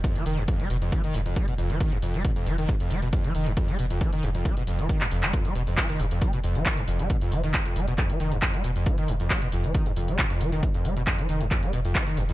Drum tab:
HH |xxoxxxoxxxoxxxoo|xxooxxoxxxoxxxox|xxoxxxoxxxoxxxoo|xxooxxoxxxoxxxox|
CP |----------------|----------------|-------------x-x|----x-------x---|
BD |o---o---o---o---|o---o---o---o---|o---o---o---o---|o---o---o---o---|

HH |xxoxxxoxxxoxxxoo|xxooxxoxxxoxxxox|xxoxxxoxxxoxxxoo|
CP |----x---x---x---|----x-------x---|----x---x---x---|
BD |o---o---o---o---|o---o---o---o---|o---o---o---o---|